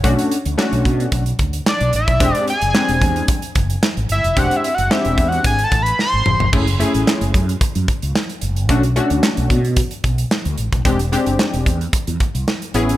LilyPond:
<<
  \new Staff \with { instrumentName = "Analog synth lead" } { \time 4/4 \key e \mixolydian \tempo 4 = 111 r2. d''8 e''8~ | e''8 gis''4. r4. e''8 | \tuplet 3/2 { fis''8 e''8 fis''8 e''4 fis''8 gis''8 a''8 b''8 } bis''4 | r1 |
r1 | r1 | }
  \new Staff \with { instrumentName = "Analog polysynth" } { \time 4/4 \key e \mixolydian <a cis' d' fis'>8 r8 <a cis' d' fis'>4 r2 | <gis bis d' g'>8 r8 <g gis bis d'>4 r2 | <gis bis d' g'>8 r8 <gis bis d' g'>4 r2 | <a cis' e' gis'>8 <a cis' e' gis'>4 r2 r8 |
<a cis' d' fis'>8 <a cis' d' fis'>4 r2 r8 | <gis bis d' g'>8 <gis bis d' g'>4 r2 <b cis' e' gis'>8 | }
  \new Staff \with { instrumentName = "Fretless electric bass" } { \clef bass \time 4/4 \key e \mixolydian b,,16 r8 d,16 r16 b,,16 b,8 b,,8 d,8 r16 b,,16 a,,16 b,,16 | e,,16 r8 fis,,16 r16 e,,16 e,8 r8 fis,,8 r16 gis,,16 g,,16 eis,,16 | e,,16 r8 fis,,16 r16 e,,16 e,8 gis,,8 a,,8 r16 gis,,16 eis,,16 g,,16 | fis,,8. a,,16 r16 fis,,16 fis,8 r16 fis,16 r16 cis,16 r8 fis,,8 |
b,,8. d,16 r16 b,,16 b,8. r16 b,,8 r16 d,16 a,,16 b,,16 | e,,8. fis,,16 r16 e,,16 e,8 r16 e,16 r16 bis,,16 r8 a,,8 | }
  \new DrumStaff \with { instrumentName = "Drums" } \drummode { \time 4/4 <hh bd>16 hh16 hh16 hh16 <hc sn>16 hh16 <hh bd>16 hh16 <hh bd>16 hh16 <hh bd>16 hh16 <hc sn>16 hh16 hh16 <hh bd>16 | <hh bd>16 hh16 hh16 hh16 <hc sn>16 hh16 <hh bd>16 hh16 <hh bd>16 hh16 <hh bd>16 hh16 <hc sn>16 hh16 hh16 hh16 | <hh bd>16 hh16 hh16 hh16 <hc sn>16 hh16 <hh bd>16 hh16 <hh bd>16 hh16 <hh bd>16 hh16 sn8 toml16 tomfh16 | <cymc bd>16 hh16 hh16 hh16 <hc sn>16 hh16 <hh bd>16 hh16 <hh bd>16 hh16 <hh bd>16 hh16 <hc sn>16 hh16 hh16 hh16 |
<hh bd>16 hh16 hh16 hh16 <hc sn>16 hh16 <hh bd>16 hh16 <hh bd>16 hh16 <hh bd>16 hh16 <hc sn>16 hh16 hh16 <hh bd>16 | <hh bd>16 hh16 hh16 hh16 <hc sn>16 hh16 <hh bd>16 hh16 <hh bd>16 hh16 <hh bd>16 hh16 <hc sn>16 hh16 hh16 hh16 | }
>>